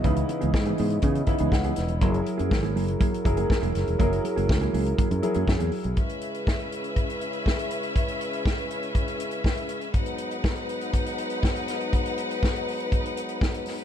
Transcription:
<<
  \new Staff \with { instrumentName = "String section" } { \time 4/4 \key cis \dorian \tempo 4 = 121 r1 | r1 | r1 | <cis' b' e''>1~ |
<cis' b' e''>1 | <dis' b' fis''>1~ | <dis' b' fis''>1 | }
  \new Staff \with { instrumentName = "Grand piano" } { \time 4/4 \key cis \dorian << { r2. fis''4 | r1 | r1 | r1 |
r1 | r1 | r1 | } \\ { <cis b dis' e'>4. r4 <cis b dis' e'>4~ <cis b dis' e'>16 r16 | <fis e' gis' ais'>4. r4 <fis e' gis' ais'>4~ <fis e' gis' ais'>16 r16 | <fis e' gis' ais'>4. r4 <fis e' gis' ais'>4~ <fis e' gis' ais'>16 r16 | r1 |
r1 | r1 | r1 | } >> }
  \new Staff \with { instrumentName = "Clean electric guitar" } { \time 4/4 \key cis \dorian <e b dis' gis'>16 r8 <e b dis' gis'>16 r16 <e b dis' gis'>16 <e b dis' gis'>16 r16 <e b dis' gis'>16 r8 <e b dis' gis'>16 r16 <e b dis' gis'>16 r8 | <fis ais e' gis'>16 r8 <fis ais e' gis'>16 r16 <fis ais e' gis'>16 <fis ais e' gis'>16 r16 <fis ais e' gis'>16 r8 <fis ais e' gis'>16 r16 <fis ais e' gis'>16 r8 | <fis ais e' gis'>16 r8 <fis ais e' gis'>16 r16 <fis ais e' gis'>16 <fis ais e' gis'>16 r16 <fis ais e' gis'>16 r8 <fis ais e' gis'>16 r16 <fis ais e' gis'>16 r8 | r1 |
r1 | r1 | r1 | }
  \new Staff \with { instrumentName = "French horn section" } { \time 4/4 \key cis \dorian <cis e b dis''>1 | <fis e' gis' ais'>1~ | <fis e' gis' ais'>1 | <cis gis e' b'>1~ |
<cis gis e' b'>1 | <gis, fis b b'>1~ | <gis, fis b b'>1 | }
  \new Staff \with { instrumentName = "Fingered electric bass" } { \clef bass \time 4/4 \key cis \dorian cis,8 r16 cis,16 gis,8 gis,8 cis8 r16 cis,16 cis,8 e,,8 | fis,,8 r16 fis,16 gis,,8 fis,,8 r8 fis,,8 r16 e,,16 fis,,16 e,,16 | fis,,8 r16 fis,,16 cis,8 cis,8 r16 fis,16 r16 fis,16 fis,16 e,16 r16 b,,16 | r1 |
r1 | r1 | r1 | }
  \new DrumStaff \with { instrumentName = "Drums" } \drummode { \time 4/4 <hh bd>16 hh16 hh16 hh16 <bd sn>16 hh16 hho16 hh16 <hh bd>16 hh16 <hh bd>16 hh16 <bd sn>16 hh16 <hh sn>16 hh16 | <hh bd>16 hh16 hh16 hh16 <bd sn>16 hh16 hho16 hh16 <hh bd>16 hh16 <hh bd>16 hh16 <bd sn>16 hh16 <hh sn>16 hh16 | <hh bd>16 hh16 hh16 hh16 <bd sn>16 hh16 hho16 hh16 <hh bd>16 hh16 hh16 hh16 <bd sn>16 hh16 hho16 hh16 | <hh bd>16 hh16 hh16 hh16 <bd sn>16 hh16 hh16 hh16 <hh bd>16 hh16 hh16 hh16 <bd sn>16 hh16 hh16 hh16 |
<hh bd>16 hh16 hh16 hh16 <bd sn>16 hh16 hh16 hh16 <hh bd>16 hh16 hh16 hh16 <bd sn>16 hh16 hh16 hh16 | <hh bd>16 hh16 hh16 hh16 <bd sn>16 hh16 hh16 hh16 <hh bd>16 hh16 hh16 hh16 <bd sn>16 hh16 <hh sn>16 hh16 | <hh bd>16 hh16 hh16 hh16 <bd sn>16 hh16 hho16 hh16 <hh bd>16 hh16 hh16 hh16 <bd sn>16 hh16 <hho sn>16 hh16 | }
>>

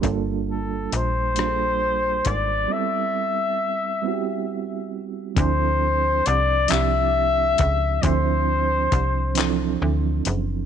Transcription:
<<
  \new Staff \with { instrumentName = "Flugelhorn" } { \time 6/8 \key d \minor \tempo 4. = 45 r8 a'8 c''4. d''8 | e''2~ e''8 r8 | c''4 d''8 e''4. | c''2 r4 | }
  \new Staff \with { instrumentName = "Reed electric piano" } { \time 6/8 \key d \minor <g bes d' f' a'>4 r8 <g bes d' f' gis' a'>4 r8 | <g b c' e' a'>4 r8 <g b c' e' fis' g'>4 r8 | <f c' d' e' a'>4 r8 <f c' d' e' g'>4 r8 | <f c' d' e' c''>4 r8 <e f c' d' e' a'>4 r8 | }
  \new Staff \with { instrumentName = "FM bass" } { \clef bass \time 6/8 \key d \minor g,,4 bes,,4. gis,,8 | r2. | d,4 c,8 c,4 cis,8 | d,4 c,4 d,8 fis,,8 | }
  \new DrumStaff \with { instrumentName = "Drums" } \drummode { \time 6/8 <hh bd>4 hh8 <hh ss>4 <hh bd>8 | r4. r4. | <hh bd>4 hh8 <hc hh>4 <hh bd>8 | <hh bd>4 <hh bd>8 <hc hh>4 hh8 | }
>>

